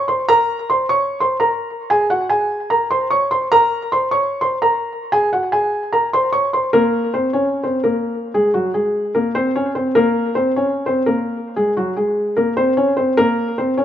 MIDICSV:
0, 0, Header, 1, 2, 480
1, 0, Start_track
1, 0, Tempo, 402685
1, 344, Time_signature, 4, 2, 24, 8
1, 16507, End_track
2, 0, Start_track
2, 0, Title_t, "Felt piano"
2, 0, Program_c, 0, 0
2, 95, Note_on_c, 0, 84, 79
2, 105, Note_on_c, 0, 72, 61
2, 283, Note_off_c, 0, 84, 0
2, 289, Note_off_c, 0, 72, 0
2, 339, Note_on_c, 0, 82, 114
2, 348, Note_on_c, 0, 70, 85
2, 793, Note_off_c, 0, 82, 0
2, 798, Note_off_c, 0, 70, 0
2, 830, Note_on_c, 0, 84, 82
2, 839, Note_on_c, 0, 72, 64
2, 1012, Note_off_c, 0, 84, 0
2, 1017, Note_off_c, 0, 72, 0
2, 1064, Note_on_c, 0, 85, 89
2, 1073, Note_on_c, 0, 73, 64
2, 1403, Note_off_c, 0, 85, 0
2, 1407, Note_off_c, 0, 73, 0
2, 1436, Note_on_c, 0, 84, 76
2, 1446, Note_on_c, 0, 72, 63
2, 1615, Note_off_c, 0, 84, 0
2, 1622, Note_off_c, 0, 72, 0
2, 1666, Note_on_c, 0, 82, 86
2, 1675, Note_on_c, 0, 70, 68
2, 2229, Note_off_c, 0, 82, 0
2, 2234, Note_off_c, 0, 70, 0
2, 2265, Note_on_c, 0, 80, 94
2, 2275, Note_on_c, 0, 68, 79
2, 2449, Note_off_c, 0, 80, 0
2, 2455, Note_off_c, 0, 68, 0
2, 2504, Note_on_c, 0, 78, 90
2, 2513, Note_on_c, 0, 66, 63
2, 2688, Note_off_c, 0, 78, 0
2, 2694, Note_off_c, 0, 66, 0
2, 2736, Note_on_c, 0, 80, 88
2, 2745, Note_on_c, 0, 68, 64
2, 3191, Note_off_c, 0, 80, 0
2, 3196, Note_off_c, 0, 68, 0
2, 3220, Note_on_c, 0, 82, 85
2, 3230, Note_on_c, 0, 70, 60
2, 3406, Note_off_c, 0, 82, 0
2, 3412, Note_off_c, 0, 70, 0
2, 3463, Note_on_c, 0, 84, 86
2, 3473, Note_on_c, 0, 72, 72
2, 3648, Note_off_c, 0, 84, 0
2, 3654, Note_off_c, 0, 72, 0
2, 3701, Note_on_c, 0, 85, 88
2, 3711, Note_on_c, 0, 73, 65
2, 3886, Note_off_c, 0, 85, 0
2, 3892, Note_off_c, 0, 73, 0
2, 3945, Note_on_c, 0, 84, 80
2, 3954, Note_on_c, 0, 72, 58
2, 4129, Note_off_c, 0, 84, 0
2, 4134, Note_off_c, 0, 72, 0
2, 4191, Note_on_c, 0, 82, 114
2, 4200, Note_on_c, 0, 70, 89
2, 4639, Note_off_c, 0, 82, 0
2, 4644, Note_off_c, 0, 70, 0
2, 4674, Note_on_c, 0, 84, 89
2, 4684, Note_on_c, 0, 72, 64
2, 4854, Note_off_c, 0, 84, 0
2, 4860, Note_off_c, 0, 72, 0
2, 4903, Note_on_c, 0, 85, 87
2, 4913, Note_on_c, 0, 73, 69
2, 5242, Note_off_c, 0, 85, 0
2, 5247, Note_off_c, 0, 73, 0
2, 5259, Note_on_c, 0, 84, 82
2, 5268, Note_on_c, 0, 72, 62
2, 5445, Note_off_c, 0, 84, 0
2, 5451, Note_off_c, 0, 72, 0
2, 5506, Note_on_c, 0, 82, 85
2, 5515, Note_on_c, 0, 70, 71
2, 6069, Note_off_c, 0, 82, 0
2, 6074, Note_off_c, 0, 70, 0
2, 6105, Note_on_c, 0, 80, 99
2, 6114, Note_on_c, 0, 68, 79
2, 6289, Note_off_c, 0, 80, 0
2, 6294, Note_off_c, 0, 68, 0
2, 6349, Note_on_c, 0, 78, 83
2, 6358, Note_on_c, 0, 66, 64
2, 6531, Note_off_c, 0, 78, 0
2, 6537, Note_off_c, 0, 66, 0
2, 6582, Note_on_c, 0, 80, 86
2, 6591, Note_on_c, 0, 68, 63
2, 7034, Note_off_c, 0, 80, 0
2, 7039, Note_off_c, 0, 68, 0
2, 7063, Note_on_c, 0, 82, 80
2, 7072, Note_on_c, 0, 70, 64
2, 7247, Note_off_c, 0, 82, 0
2, 7253, Note_off_c, 0, 70, 0
2, 7311, Note_on_c, 0, 84, 90
2, 7321, Note_on_c, 0, 72, 74
2, 7493, Note_off_c, 0, 84, 0
2, 7499, Note_off_c, 0, 72, 0
2, 7539, Note_on_c, 0, 85, 86
2, 7550, Note_on_c, 0, 73, 62
2, 7725, Note_off_c, 0, 85, 0
2, 7732, Note_off_c, 0, 73, 0
2, 7787, Note_on_c, 0, 84, 71
2, 7797, Note_on_c, 0, 72, 58
2, 7970, Note_off_c, 0, 84, 0
2, 7976, Note_off_c, 0, 72, 0
2, 8023, Note_on_c, 0, 70, 106
2, 8033, Note_on_c, 0, 58, 79
2, 8475, Note_off_c, 0, 70, 0
2, 8480, Note_off_c, 0, 58, 0
2, 8507, Note_on_c, 0, 72, 81
2, 8518, Note_on_c, 0, 60, 56
2, 8690, Note_off_c, 0, 72, 0
2, 8697, Note_off_c, 0, 60, 0
2, 8740, Note_on_c, 0, 73, 80
2, 8750, Note_on_c, 0, 61, 60
2, 9081, Note_off_c, 0, 73, 0
2, 9086, Note_off_c, 0, 61, 0
2, 9100, Note_on_c, 0, 72, 73
2, 9110, Note_on_c, 0, 60, 52
2, 9286, Note_off_c, 0, 72, 0
2, 9292, Note_off_c, 0, 60, 0
2, 9340, Note_on_c, 0, 70, 80
2, 9350, Note_on_c, 0, 58, 62
2, 9906, Note_off_c, 0, 70, 0
2, 9911, Note_off_c, 0, 58, 0
2, 9945, Note_on_c, 0, 68, 92
2, 9954, Note_on_c, 0, 56, 70
2, 10129, Note_off_c, 0, 68, 0
2, 10135, Note_off_c, 0, 56, 0
2, 10178, Note_on_c, 0, 66, 77
2, 10188, Note_on_c, 0, 54, 61
2, 10364, Note_off_c, 0, 66, 0
2, 10370, Note_off_c, 0, 54, 0
2, 10419, Note_on_c, 0, 68, 76
2, 10429, Note_on_c, 0, 56, 60
2, 10873, Note_off_c, 0, 68, 0
2, 10878, Note_off_c, 0, 56, 0
2, 10902, Note_on_c, 0, 70, 81
2, 10912, Note_on_c, 0, 58, 63
2, 11087, Note_off_c, 0, 70, 0
2, 11093, Note_off_c, 0, 58, 0
2, 11144, Note_on_c, 0, 72, 99
2, 11152, Note_on_c, 0, 60, 69
2, 11328, Note_off_c, 0, 72, 0
2, 11333, Note_off_c, 0, 60, 0
2, 11389, Note_on_c, 0, 73, 84
2, 11399, Note_on_c, 0, 61, 66
2, 11572, Note_off_c, 0, 73, 0
2, 11578, Note_off_c, 0, 61, 0
2, 11622, Note_on_c, 0, 72, 75
2, 11631, Note_on_c, 0, 60, 57
2, 11807, Note_off_c, 0, 72, 0
2, 11813, Note_off_c, 0, 60, 0
2, 11861, Note_on_c, 0, 70, 102
2, 11871, Note_on_c, 0, 58, 87
2, 12314, Note_off_c, 0, 70, 0
2, 12319, Note_off_c, 0, 58, 0
2, 12339, Note_on_c, 0, 72, 81
2, 12349, Note_on_c, 0, 60, 63
2, 12525, Note_off_c, 0, 72, 0
2, 12531, Note_off_c, 0, 60, 0
2, 12592, Note_on_c, 0, 73, 76
2, 12601, Note_on_c, 0, 61, 65
2, 12927, Note_off_c, 0, 73, 0
2, 12932, Note_off_c, 0, 61, 0
2, 12947, Note_on_c, 0, 72, 80
2, 12957, Note_on_c, 0, 60, 58
2, 13130, Note_off_c, 0, 72, 0
2, 13136, Note_off_c, 0, 60, 0
2, 13187, Note_on_c, 0, 70, 84
2, 13198, Note_on_c, 0, 58, 67
2, 13750, Note_off_c, 0, 70, 0
2, 13755, Note_off_c, 0, 58, 0
2, 13784, Note_on_c, 0, 68, 89
2, 13794, Note_on_c, 0, 56, 75
2, 13968, Note_off_c, 0, 68, 0
2, 13974, Note_off_c, 0, 56, 0
2, 14027, Note_on_c, 0, 66, 75
2, 14035, Note_on_c, 0, 54, 62
2, 14210, Note_off_c, 0, 66, 0
2, 14215, Note_off_c, 0, 54, 0
2, 14263, Note_on_c, 0, 68, 78
2, 14272, Note_on_c, 0, 56, 60
2, 14715, Note_off_c, 0, 68, 0
2, 14720, Note_off_c, 0, 56, 0
2, 14740, Note_on_c, 0, 70, 81
2, 14750, Note_on_c, 0, 58, 59
2, 14926, Note_off_c, 0, 70, 0
2, 14932, Note_off_c, 0, 58, 0
2, 14981, Note_on_c, 0, 72, 93
2, 14990, Note_on_c, 0, 60, 65
2, 15166, Note_off_c, 0, 72, 0
2, 15172, Note_off_c, 0, 60, 0
2, 15221, Note_on_c, 0, 73, 82
2, 15231, Note_on_c, 0, 61, 62
2, 15407, Note_off_c, 0, 73, 0
2, 15412, Note_off_c, 0, 61, 0
2, 15456, Note_on_c, 0, 72, 78
2, 15466, Note_on_c, 0, 60, 56
2, 15643, Note_off_c, 0, 72, 0
2, 15650, Note_off_c, 0, 60, 0
2, 15703, Note_on_c, 0, 70, 113
2, 15713, Note_on_c, 0, 58, 86
2, 16155, Note_off_c, 0, 70, 0
2, 16160, Note_off_c, 0, 58, 0
2, 16188, Note_on_c, 0, 72, 81
2, 16197, Note_on_c, 0, 60, 60
2, 16371, Note_off_c, 0, 72, 0
2, 16376, Note_off_c, 0, 60, 0
2, 16419, Note_on_c, 0, 73, 79
2, 16429, Note_on_c, 0, 61, 65
2, 16507, Note_off_c, 0, 61, 0
2, 16507, Note_off_c, 0, 73, 0
2, 16507, End_track
0, 0, End_of_file